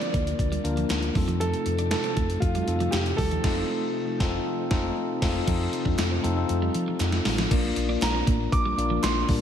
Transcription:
Already playing: D3 F3 A#3 D4 F4 A#4 D5
0.01 C4, closed hi-hat
0.14 D2 A#3, kick, closed hi-hat
0.27 closed hi-hat
0.39 D2, kick, closed hi-hat
0.52 G3, closed hi-hat
0.64 D2 A#3 D4 F4 A#4, muted clean electric guitar stroke, closed hi-hat
0.77 F3, closed hi-hat
0.90 D2, muted clean electric guitar stroke, snare, clap, closed hi-hat
1.03 closed hi-hat
1.15 F2 C3 F3 G3 A3 C4 D#4 F4 A4, kick, open hi-hat
1.28 F3, closed hi-hat
1.40 F3 A4, closed hi-hat
1.53 closed hi-hat
1.66 F2, muted clean electric guitar stroke, closed hi-hat
1.78 D4, closed hi-hat
1.91 A4, muted clean electric guitar stroke, snare, clap, closed hi-hat
2.04 C4, closed hi-hat
2.17 F2 A3, kick, closed hi-hat
2.30 closed hi-hat
2.40 F2 F4, kick, closed hi-hat
2.55 G3, closed hi-hat
2.67 F2 C4 D#4 F4 A4, muted clean electric guitar stroke, closed hi-hat
2.80 F3, closed hi-hat
2.91 F2 G4, muted clean electric guitar stroke, snare, clap, closed hi-hat
3.06 closed hi-hat
3.17 D#2 G3 A4, kick, open hi-hat
3.31 F3, closed hi-hat
3.44 F1 C4 D#4 F4 A4, kick, snare, crash
4.20 F1 C4 D#4 F4 A4, kick, snare
4.71 F1 C4 D#4 F4 A4, kick, snare
5.22 F1 C4 D#4 F4 A4, kick, snare, crash
5.47 F2 C3 F3 A3 C4 D#4 F4 A4, kick, closed hi-hat, crash
5.73 muted clean electric guitar stroke, closed hi-hat
5.85 F2 D4, kick
5.98 F2, muted clean electric guitar stroke, snare, clap, closed hi-hat, tambourine
6.11 C4
6.23 F2 A3 C4 D#4 F4 A4, closed hi-hat
6.36 C4 D#4 F4 A4
6.49 F2, closed hi-hat
6.62 G3
6.74 F3, muted clean electric guitar stroke, closed hi-hat
6.88 F3
7.00 F2, muted clean electric guitar stroke, snare, clap, closed hi-hat
7.12 snare
7.25 A1 G3, snare, open hi-hat
7.38 F3, snare
7.50 A#1 A#3 D4 F4 A#4 D5, kick, closed hi-hat, crash
7.76 A#1, muted clean electric guitar stroke, closed hi-hat
7.89 D4
8.02 A#1 A#5, muted clean electric guitar stroke, snare, clap, closed hi-hat, tambourine
8.15 C4
8.27 A1 A#3, kick, closed hi-hat
8.52 A#1 D6, kick, closed hi-hat
8.65 G3
8.77 A#1 A#3 D4 F4 A#4 D5, muted clean electric guitar stroke, closed hi-hat
8.90 F3
9.03 A#1 C6, snare, clap, closed hi-hat, tambourine
9.29 A1 G3 A#3 D4 F4 A#4 D5, kick, open hi-hat

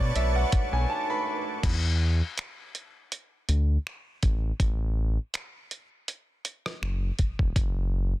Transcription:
Already playing: A3 C#4 D4 F#4 B4 C#5 A5 C#6 D6
0.00 B2 D5
0.15 B1 E5, closed hi-hat
0.36 F#5
0.52 B1, kick, closed hi-hat
0.72 B1 G#5
0.90 A5
1.10 B5
1.63 E2, kick, closed hi-hat, crash
2.38 finger snap, closed hi-hat
2.75 closed hi-hat
3.12 closed hi-hat
3.49 D2, closed hi-hat
3.87 finger snap
4.23 A1, kick, closed hi-hat
4.60 A1, kick, closed hi-hat
5.34 finger snap, closed hi-hat
5.71 closed hi-hat
6.08 closed hi-hat
6.45 closed hi-hat
6.66 cross-stick
6.82 F#1, finger snap
7.19 kick, closed hi-hat
7.39 E1, kick
7.56 F#1, kick, closed hi-hat

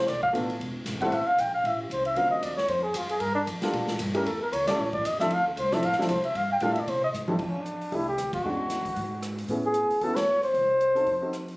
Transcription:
0.07 B1 D5, kick, snare, ride
0.23 F5, kick
0.33 A1 A3 B3 D4 F4 A4, kick, hi-hat pedal, ride
0.50 ride
0.60 E1, kick, ride
0.85 G#1, kick, snare, hi-hat pedal, ride
1.01 G3 A3 C4 E4 A4 F#5, kick, ride
1.12 A1 E5, kick, ride
1.26 F5, muted upright bass stroke
1.38 A#1 G5, kick, hi-hat pedal, ride
1.54 F5
1.64 A1 E5, kick, ride
1.82 G4
1.90 C2 C5, kick, hi-hat pedal, ride
2.05 E5, ride
2.16 D2 F#3 C4 D4 F4 A#4 F5, kick, ride
2.31 D#5
2.42 D#2 D5, kick, hi-hat pedal, ride
2.57 C#5, snare
2.68 F2 C5, kick, ride
2.83 G#4
2.94 F#2 F4, kick, hi-hat pedal, ride
3.09 G#4, ride
3.20 G2 A#4, kick, ride
3.35 D4
3.47 F2, kick, hi-hat pedal, ride
3.62 G3 A#3 D4 F4 A4, muted upright bass stroke, snare, ride
3.73 A#2, kick, ride
3.88 snare
3.99 G2, kick, hi-hat pedal, ride
4.14 G3 A3 C#4 E4 G4 A#4, ride
4.25 E2 A4, kick, ride
4.42 A#4
4.52 C#2 C#5, kick, hi-hat pedal, ride
4.67 G3 A3 C#4 E4 A4 D5, snare, ride
4.78 A1 C#5, kick
4.93 D5, kick
5.04 E2 D#5, kick, hi-hat pedal, ride
5.20 F3 C4 D4 E4 A4 E5, snare
5.30 D2 F5, kick, ride
5.48 A4
5.56 C2 C5, kick, hi-hat pedal, ride
5.72 F3 C4 D4 E4 A4 E5, snare, ride
5.82 A1 F5, kick, ride
5.92 snare
5.98 F3 C4 D4 E4 A4, muted upright bass stroke, snare
6.09 C2 C5, kick, hi-hat pedal, ride
6.24 E5, muted upright bass stroke, ride
6.35 G2 F5, kick, ride
6.52 G5
6.60 A2 G3 A#3 D4 F4 A4 F5, kick, hi-hat pedal, ride
6.72 E5, ride
6.80 D5
6.87 C3 C5, kick, ride
7.04 D#5
7.14 G#2, hi-hat pedal
7.28 F2 G3 C4 D4 E4 A4, high tom
7.39 kick, crash
7.49 C#4
7.59 D4
7.66 closed hi-hat
7.81 open hi-hat
7.92 C2 A3 D4 E4 G4, kick, open hi-hat
8.09 G4
8.18 D2, cross-stick, closed hi-hat
8.33 F#4, kick, ride
8.44 E2 G#3 C#4 D4 F#4
8.70 snare, closed hi-hat
8.85 muted upright bass stroke, kick, open hi-hat
8.96 G#2, kick, open hi-hat
9.22 cross-stick, closed hi-hat
9.38 open hi-hat
9.48 A2 B3 C#4 E4 G#4, kick, open hi-hat
9.66 G#4
9.74 closed hi-hat
9.90 muted upright bass stroke, open hi-hat
10.01 E2 B3 C#4 E4 F#4 A4, kick, open hi-hat
10.16 C#5, snare, ride
10.43 C5, open hi-hat
10.54 C2, kick, open hi-hat
10.81 closed hi-hat
10.95 C4 D#4 F#4 A4, open hi-hat
11.07 F2, kick, open hi-hat
11.22 C4 D#4 F#4 A4
11.33 cross-stick, closed hi-hat
11.48 open hi-hat

